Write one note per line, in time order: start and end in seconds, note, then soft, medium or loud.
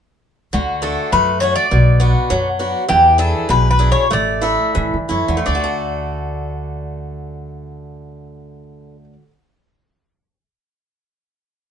0.53 0.95 D2 medium
0.53 1.10 D3 medium
0.53 0.84 F#4 medium
0.82 1.11 A3 soft
0.82 1.30 D4 soft
0.82 1.30 F#4 soft
0.82 1.10 A4 medium
1.12 1.54 F#2 medium
1.12 1.41 A3 medium
1.12 1.40 B4 medium
1.40 1.65 A3 soft
1.40 1.66 D4 soft
1.40 1.66 F#4 soft
1.40 1.55 C#5 medium
1.55 2.11 D5 medium
1.71 2.13 B1 loud
1.71 2.28 B2 medium
2.00 2.47 B3 soft
2.00 2.48 D4 soft
2.00 2.48 F#4 medium
2.30 2.72 F#2 medium
2.30 2.87 F#3 medium
2.59 2.83 B3 soft
2.59 2.83 D4 soft
2.59 2.83 F#4 soft
2.88 3.31 E2 loud
2.88 3.47 E3 medium
2.88 3.19 G4 medium
3.18 3.67 D4 soft
3.18 3.67 E4 soft
3.18 3.67 G#4 medium
3.18 3.50 A4 medium
3.49 3.92 B1 medium
3.49 4.08 B2 medium
3.49 3.68 B4 medium
3.71 3.89 B4 medium
3.79 4.04 D4 soft
3.79 4.04 E4 soft
3.79 4.04 G#4 soft
3.92 4.12 C#5 medium
4.11 4.57 A1 medium
4.11 4.74 A3 medium
4.11 5.07 D5 medium
4.42 4.96 E4 medium
4.42 4.96 A4 soft
4.42 4.96 E5 medium
4.75 4.91 A2 medium
4.75 5.43 E3 medium
4.94 5.09 G2 medium
5.09 5.26 F#2 medium
5.09 5.38 E4 soft
5.09 5.38 A4 soft
5.09 5.38 C#5 soft
5.28 5.44 E2 medium
5.28 8.95 D3 soft
5.37 9.04 A3 soft
5.46 9.15 D2 medium
5.46 9.13 D4 soft
5.46 9.13 D5 medium
5.55 9.22 F#4 soft
5.64 9.31 A4 medium